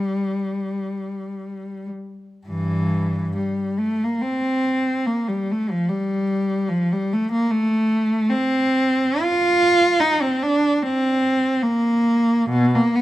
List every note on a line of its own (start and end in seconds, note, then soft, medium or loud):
0.00 1.89 G3 medium
2.47 3.33 G2 medium
2.47 3.34 E3 medium
3.36 3.79 G3 medium
3.79 4.01 A3 medium
4.04 4.24 A#3 medium
4.22 5.07 C4 medium
5.06 5.28 A#3 medium
5.28 5.49 G3 medium
5.51 5.71 A3 medium
5.71 5.90 F3 medium
5.89 6.69 G3 medium
6.69 6.90 F3 medium
6.92 7.12 G3 medium
7.13 7.32 A3 medium
7.32 7.50 A#3 medium
7.51 8.30 A3 medium
8.29 9.19 C4 medium
9.21 10.00 F4 loud
10.00 10.20 D#4 medium
10.22 10.41 C4 medium
10.43 10.83 D4 medium
10.82 11.61 C4 medium
11.62 12.50 A#3 medium
12.49 12.72 B2 medium
12.75 12.95 A#3 medium
12.95 13.02 B3 medium